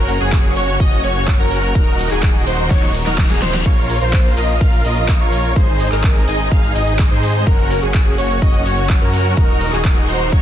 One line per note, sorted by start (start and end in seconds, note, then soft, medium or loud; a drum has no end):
0.00 0.18 F#1 loud
0.00 1.73 A#3 medium
0.00 0.18 C#4 medium
0.00 1.73 C#4 medium
0.00 0.18 F#4 medium
0.00 1.73 F#4 medium
0.00 0.18 A#4 loud
0.09 open hi-hat loud
0.09 shaker medium
0.20 0.54 F#1 loud
0.20 0.53 C#4 medium
0.20 0.53 F#4 medium
0.20 0.53 G#4 loud
0.20 closed hi-hat soft
0.20 shaker soft
0.32 kick loud
0.32 clap loud
0.32 closed hi-hat medium
0.32 shaker soft
0.44 closed hi-hat soft
0.44 shaker soft
0.56 0.78 F#1 loud
0.56 0.77 C#4 medium
0.56 0.77 F#4 medium
0.56 0.77 C#5 medium
0.56 open hi-hat loud
0.56 shaker medium
0.68 closed hi-hat soft
0.68 shaker soft
0.80 1.01 F#1 loud
0.80 1.01 C#4 loud
0.80 1.01 F#4 medium
0.80 1.01 D#5 loud
0.80 kick loud
0.80 closed hi-hat medium
0.80 shaker soft
0.92 open hi-hat medium
0.92 shaker soft
1.04 1.37 F#1 loud
1.04 1.37 C#4 medium
1.04 1.37 F#4 medium
1.04 1.37 C#5 medium
1.04 open hi-hat loud
1.04 shaker medium
1.16 closed hi-hat soft
1.16 shaker soft
1.28 kick loud
1.28 clap loud
1.28 closed hi-hat medium
1.28 shaker soft
1.39 1.73 F#1 loud
1.39 1.72 C#4 loud
1.39 1.72 F#4 medium
1.39 1.72 A#4 loud
1.39 closed hi-hat soft
1.39 shaker soft
1.52 open hi-hat loud
1.52 shaker medium
1.63 closed hi-hat soft
1.63 shaker soft
1.75 3.64 D#3 medium
1.75 3.64 D#4 medium
1.75 3.64 F#4 medium
1.75 2.08 A#4 loud
1.75 3.64 A#4 medium
1.75 kick loud
1.75 closed hi-hat medium
1.75 shaker soft
1.87 closed hi-hat soft
1.87 shaker soft
1.99 open hi-hat loud
1.99 shaker medium
2.11 2.44 D#1 loud
2.11 2.44 D#4 medium
2.11 2.44 F#4 medium
2.11 2.44 G#4 loud
2.11 clap soft
2.11 closed hi-hat soft
2.11 shaker soft
2.23 kick loud
2.23 clap loud
2.23 closed hi-hat medium
2.23 shaker soft
2.35 closed hi-hat soft
2.35 shaker soft
2.47 2.68 D#1 loud
2.47 2.68 D#4 medium
2.47 2.68 F#4 medium
2.47 2.68 C5 medium
2.47 open hi-hat loud
2.47 shaker medium
2.59 closed hi-hat soft
2.59 shaker soft
2.70 2.92 D#4 loud
2.70 2.92 F#4 medium
2.70 2.91 C#5 loud
2.70 2.92 C#5 loud
2.70 kick loud
2.70 snare medium
2.70 closed hi-hat medium
2.70 reverse cymbal medium
2.70 shaker soft
2.82 snare medium
2.82 closed hi-hat soft
2.82 shaker soft
2.94 open hi-hat loud
2.94 shaker medium
3.06 3.28 D#1 loud
3.06 3.27 D#4 medium
3.06 3.27 F#4 medium
3.06 3.27 A#4 loud
3.06 3.27 A#4 medium
3.06 snare medium
3.06 closed hi-hat soft
3.06 shaker soft
3.18 kick loud
3.18 snare medium
3.18 clap loud
3.18 closed hi-hat medium
3.18 shaker soft
3.30 3.40 D#1 loud
3.30 3.39 D#4 medium
3.30 3.39 F#4 medium
3.30 3.39 G#4 loud
3.30 snare medium
3.30 closed hi-hat soft
3.30 shaker soft
3.42 3.63 D#1 loud
3.42 3.55 D#4 medium
3.42 3.55 F#4 medium
3.42 3.55 C5 medium
3.42 snare loud
3.42 open hi-hat loud
3.42 shaker medium
3.54 snare medium
3.54 closed hi-hat soft
3.54 shaker soft
3.66 3.99 A#1 loud
3.66 5.54 A#3 medium
3.66 5.54 C#4 medium
3.66 3.99 F4 medium
3.66 5.54 F4 medium
3.66 3.99 A#4 medium
3.66 3.99 C#5 loud
3.66 kick loud
3.66 closed hi-hat medium
3.66 crash medium
3.66 shaker soft
3.78 closed hi-hat soft
3.78 shaker soft
3.90 open hi-hat loud
3.90 shaker medium
4.01 4.35 A#1 loud
4.01 4.34 F4 medium
4.01 4.34 A#4 medium
4.01 4.34 C5 loud
4.01 closed hi-hat soft
4.01 shaker soft
4.13 kick loud
4.13 clap loud
4.13 closed hi-hat medium
4.13 shaker soft
4.25 closed hi-hat soft
4.25 shaker soft
4.37 4.59 A#1 medium
4.37 4.58 F4 medium
4.37 4.58 A#4 medium
4.37 4.58 D#5 medium
4.37 open hi-hat loud
4.37 shaker medium
4.49 closed hi-hat soft
4.49 shaker soft
4.61 4.82 A#1 loud
4.61 4.82 F4 loud
4.61 4.82 A#4 medium
4.61 4.82 F5 loud
4.61 kick loud
4.61 closed hi-hat medium
4.61 shaker soft
4.73 open hi-hat medium
4.73 shaker soft
4.85 5.18 A#1 loud
4.85 5.18 F4 medium
4.85 5.18 A#4 medium
4.85 5.18 D#5 medium
4.85 open hi-hat loud
4.85 shaker medium
4.97 closed hi-hat soft
4.97 shaker soft
5.09 kick loud
5.09 clap loud
5.09 closed hi-hat medium
5.09 shaker soft
5.20 5.54 A#1 loud
5.20 5.53 F4 loud
5.20 5.53 A#4 medium
5.20 5.53 C#5 loud
5.20 closed hi-hat soft
5.20 shaker soft
5.32 open hi-hat loud
5.32 shaker medium
5.44 closed hi-hat soft
5.44 shaker soft
5.56 7.45 G#3 medium
5.56 7.45 C4 medium
5.56 5.89 D#4 medium
5.56 7.45 D#4 medium
5.56 5.89 C5 loud
5.56 kick loud
5.56 closed hi-hat medium
5.56 shaker soft
5.68 closed hi-hat soft
5.68 shaker soft
5.80 open hi-hat loud
5.80 shaker medium
5.92 6.25 G#1 loud
5.92 6.25 D#4 medium
5.92 6.25 G#4 medium
5.92 6.25 A#4 loud
5.92 clap soft
5.92 closed hi-hat soft
5.92 shaker soft
6.04 kick loud
6.04 clap loud
6.04 closed hi-hat medium
6.04 shaker soft
6.16 closed hi-hat soft
6.16 shaker soft
6.28 6.49 G#1 loud
6.28 6.49 D#4 medium
6.28 6.49 G#4 medium
6.28 6.49 D#5 medium
6.28 open hi-hat loud
6.28 shaker medium
6.40 closed hi-hat soft
6.40 shaker soft
6.51 6.73 G#1 loud
6.51 6.72 D#4 loud
6.51 6.72 G#4 medium
6.51 6.72 F5 loud
6.51 kick loud
6.51 closed hi-hat medium
6.51 shaker soft
6.63 closed hi-hat soft
6.63 shaker soft
6.75 7.09 G#1 loud
6.75 7.08 D#4 medium
6.75 7.08 G#4 medium
6.75 7.08 D#5 medium
6.75 open hi-hat loud
6.75 shaker medium
6.87 closed hi-hat soft
6.87 shaker soft
6.99 kick loud
6.99 clap loud
6.99 closed hi-hat medium
6.99 shaker soft
7.11 7.44 G#2 loud
7.11 7.44 D#4 loud
7.11 7.44 G#4 medium
7.11 7.44 C5 loud
7.11 closed hi-hat soft
7.11 shaker soft
7.23 open hi-hat loud
7.23 shaker medium
7.35 closed hi-hat soft
7.35 shaker soft
7.47 7.80 F#1 loud
7.47 9.35 A#3 medium
7.47 9.35 C#4 medium
7.47 7.80 C#4 medium
7.47 10.42 F#4 medium
7.47 7.80 F#4 medium
7.47 7.80 A#4 loud
7.47 kick loud
7.47 closed hi-hat medium
7.47 shaker soft
7.59 closed hi-hat soft
7.59 shaker soft
7.71 open hi-hat loud
7.71 shaker medium
7.82 8.16 F#1 loud
7.82 8.15 C#4 medium
7.82 8.15 F#4 medium
7.82 8.15 G#4 loud
7.82 closed hi-hat soft
7.82 shaker soft
7.94 kick loud
7.94 clap loud
7.94 closed hi-hat medium
7.94 shaker soft
8.06 closed hi-hat soft
8.06 shaker soft
8.18 8.40 F#1 medium
8.18 8.39 C#4 medium
8.18 8.39 F#4 medium
8.18 8.39 C#5 medium
8.18 open hi-hat loud
8.18 shaker medium
8.30 closed hi-hat soft
8.30 shaker soft
8.42 8.63 C#4 loud
8.42 8.63 F#4 medium
8.42 8.63 D#5 loud
8.42 kick loud
8.42 closed hi-hat medium
8.42 shaker soft
8.54 open hi-hat medium
8.54 shaker soft
8.66 8.99 F#1 loud
8.66 8.99 C#4 medium
8.66 8.99 F#4 medium
8.66 8.99 C#5 medium
8.66 open hi-hat loud
8.66 shaker medium
8.78 closed hi-hat soft
8.78 shaker soft
8.90 kick loud
8.90 clap loud
8.90 closed hi-hat medium
8.90 shaker soft
9.01 9.35 F#2 loud
9.01 9.34 C#4 loud
9.01 9.34 F#4 medium
9.01 9.34 A#4 loud
9.01 closed hi-hat soft
9.01 shaker soft
9.13 open hi-hat loud
9.13 shaker medium
9.25 closed hi-hat soft
9.25 shaker soft
9.37 9.71 D#1 medium
9.37 10.42 D#3 medium
9.37 10.42 D#4 medium
9.37 9.70 F#4 medium
9.37 9.70 A#4 loud
9.37 10.42 A#4 medium
9.37 kick loud
9.37 closed hi-hat medium
9.37 shaker soft
9.49 closed hi-hat soft
9.49 shaker soft
9.61 open hi-hat loud
9.61 shaker medium
9.73 10.06 D#1 loud
9.73 10.06 D#4 medium
9.73 10.06 F#4 medium
9.73 10.06 G#4 loud
9.73 clap soft
9.73 shaker soft
9.85 kick loud
9.85 clap loud
9.85 closed hi-hat medium
9.85 shaker soft
9.97 closed hi-hat soft
9.97 shaker soft
10.09 10.30 D#1 loud
10.09 10.30 D#4 medium
10.09 10.30 F#4 medium
10.09 10.30 C5 medium
10.09 open hi-hat loud
10.09 shaker medium
10.21 closed hi-hat soft
10.21 shaker soft
10.32 10.42 D#1 loud
10.32 10.42 D#4 loud
10.32 10.42 F#4 medium
10.32 10.42 C#5 loud
10.32 kick loud
10.32 closed hi-hat medium
10.32 shaker soft